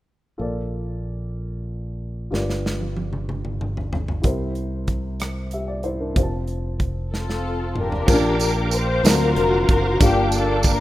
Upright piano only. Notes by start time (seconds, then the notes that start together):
0.38 A#2 F4 A4 A#4 D5
2.31 G2 F4 G4 A#4 D5
2.39 B4
4.22 C3 E4 G4 A#4 C5
5.53 G4 E5
5.68 D5
5.84 E4 C5
6.00 D4 A#4
6.14 C4 F4 G4 C5
6.23 A5
8.06 A#2 C#4 F4 G4 A#4
8.13 D4
9.03 D3 F#3 C4 D4 A4
9.12 A#4
9.99 G2 A#3 D4 F4 G4